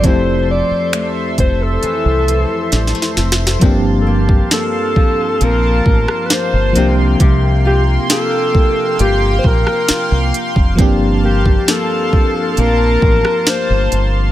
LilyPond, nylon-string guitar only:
\new Staff \with { instrumentName = "Nylon-string guitar" } { \time 4/4 \key g \dorian \tempo 4 = 67 f,4 a4 e8 e8 g16 a16 c'8 | <g, c'>8 bes8 <f bes c'>8 f8 <f bes c'>4 bes8 c8 | <c g'>8 f'8 <bes f' g'>8 bes8 <bes f' g'>4 f'4 | <g, c'>8 bes8 <f bes c'>8 f8 <f bes c'>4 bes4 | }